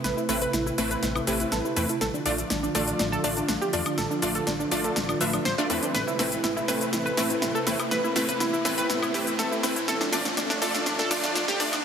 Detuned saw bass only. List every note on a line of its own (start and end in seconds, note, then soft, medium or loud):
0.04 0.13 A1 medium
0.29 0.46 A1 medium
0.53 0.71 A1 medium
0.78 0.95 A1 medium
1.03 1.20 A1 medium
1.27 1.45 A1 medium
1.52 1.61 A1 medium
1.77 1.85 E2 medium
2.01 2.10 A1 loud
2.26 2.43 A1 medium
2.50 2.68 A1 medium
2.75 2.92 A1 medium
2.99 3.17 A1 medium
3.24 3.41 A1 medium
3.49 3.57 A1 medium
3.73 3.82 E2 medium
3.98 4.07 A1 loud
4.22 4.40 A1 medium
4.47 4.64 A1 loud
4.72 4.89 A1 medium
4.96 5.13 A1 medium
5.21 5.38 A1 medium
5.45 5.54 A1 medium
5.70 5.79 E2 medium
5.94 6.03 A1 loud
6.19 6.36 A1 medium
6.44 6.61 A1 medium
6.68 6.86 A1 medium
6.93 7.10 A1 medium
7.17 7.35 A1 medium
7.42 7.51 A1 medium
7.67 7.75 E2 medium
7.91 8.00 A1 medium
8.16 8.33 A1 medium
8.40 8.58 A1 medium
8.65 8.82 A1 medium
8.90 9.07 A1 medium
9.14 9.31 A1 loud
9.39 9.48 A1 medium
9.63 9.72 E2 medium
9.88 9.97 A1 loud
10.13 10.30 A1 medium
10.37 10.54 A1 loud
10.62 10.79 A1 medium
10.86 11.04 A1 medium
11.11 11.28 A1 medium
11.35 11.44 A1 medium
11.60 11.69 E2 medium